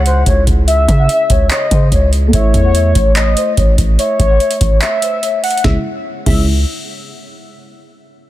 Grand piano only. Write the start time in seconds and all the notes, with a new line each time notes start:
Already playing: C#3 G#3 E4
2.28 A3
2.33 E4
2.39 C#5
5.64 C#3 G#3 E4
6.26 C#3 G#3 E4